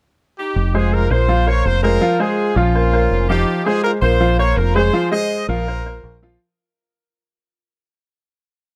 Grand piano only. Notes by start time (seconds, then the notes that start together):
0.74 G#3 G#4 C5
1.10 A#3 A#4 C5
1.28 F3 F4 F5
1.47 A#3 A#4 C5
1.83 G#3 G#4 C5
2.01 F3 F4 F5
2.20 G#3 G#4 C5
2.56 F3 F4 F5
2.75 A#3 A#4 C5
2.93 A#3 A#4 C5
3.30 F3 F4 F5
3.66 G#3 G#4 C5
4.02 A#3 A#4 C5
4.21 F3 F4 F5
4.39 A#3 A#4 C5
4.75 G#3 G#4 C5
4.93 F3 F4 F5
5.12 G#3 G#4 C5
5.48 F3 F4 F5
5.67 A#3 A#4 C5
5.86 A#3 A#4 C5
6.23 F3 F4 F5